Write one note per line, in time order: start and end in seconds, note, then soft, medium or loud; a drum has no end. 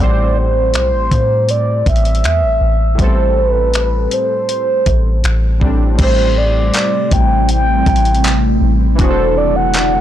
0.00 0.75 A1 loud
0.00 2.93 A2 medium
0.00 2.94 G3 medium
0.00 2.96 C4 medium
0.00 2.97 C5 medium
0.00 0.40 D5 loud
0.38 0.75 C5 medium
0.74 0.94 B1 medium
0.74 1.52 C5 loud
0.74 finger snap loud
0.74 closed hi-hat medium
0.93 1.10 A1 medium
1.11 1.83 A2 loud
1.11 kick medium
1.11 closed hi-hat medium
1.49 1.87 D5 medium
1.49 closed hi-hat medium
1.86 2.25 A1 loud
1.86 3.02 E5 loud
1.86 kick loud
1.86 closed hi-hat medium
1.96 closed hi-hat soft
2.05 closed hi-hat soft
2.15 closed hi-hat soft
2.24 2.44 E2 loud
2.24 finger snap loud
2.24 closed hi-hat medium
2.43 2.60 A1 medium
2.61 2.97 A1 medium
2.95 4.07 A1 loud
2.95 5.56 A2 medium
2.95 5.57 G3 medium
2.95 kick loud
2.95 closed hi-hat medium
3.01 3.06 B3 soft
3.01 5.60 A4 medium
3.01 3.40 C5 loud
3.07 5.62 C4 medium
3.38 4.15 B4 medium
3.74 finger snap loud
3.74 closed hi-hat medium
4.11 5.62 C5 medium
4.11 closed hi-hat medium
4.49 closed hi-hat medium
4.86 5.22 A1 loud
4.86 kick medium
4.86 closed hi-hat medium
5.24 5.60 A1 loud
5.24 finger snap loud
5.24 closed hi-hat medium
5.60 5.97 A1 medium
5.60 5.94 A2 medium
5.60 5.97 G3 medium
5.60 6.00 C4 medium
5.60 kick medium
5.64 6.00 D4 medium
5.95 6.71 A1 loud
5.95 8.93 A2 medium
5.95 8.96 C3 medium
5.95 8.94 G3 medium
5.95 8.96 G3 medium
5.95 10.01 A3 medium
5.95 8.96 C4 medium
5.95 10.01 E4 medium
5.95 kick loud
5.95 closed hi-hat medium
5.95 crash loud
6.01 8.96 C4 medium
6.01 6.39 C5 loud
6.01 8.97 C5 medium
6.38 7.14 D5 loud
6.74 clap loud
6.74 closed hi-hat medium
7.11 7.83 A1 loud
7.11 7.50 G5 loud
7.11 kick medium
7.11 closed hi-hat medium
7.49 8.58 G5 loud
7.49 closed hi-hat medium
7.86 8.58 A1 loud
7.86 kick loud
7.86 closed hi-hat medium
7.96 closed hi-hat medium
8.05 closed hi-hat soft
8.15 closed hi-hat soft
8.24 clap loud
8.24 closed hi-hat medium
8.61 8.97 A1 loud
8.95 10.01 B2 medium
8.95 10.01 D3 medium
8.95 10.01 E3 medium
8.95 10.01 F#3 medium
8.95 10.01 D4 medium
8.95 kick loud
8.95 closed hi-hat medium
9.01 10.01 F#4 medium
9.01 9.08 G#4 medium
9.01 9.39 C5 loud
9.11 10.01 A4 medium
9.38 9.57 D5 medium
9.56 10.01 F#5 loud
9.74 clap loud
9.74 closed hi-hat medium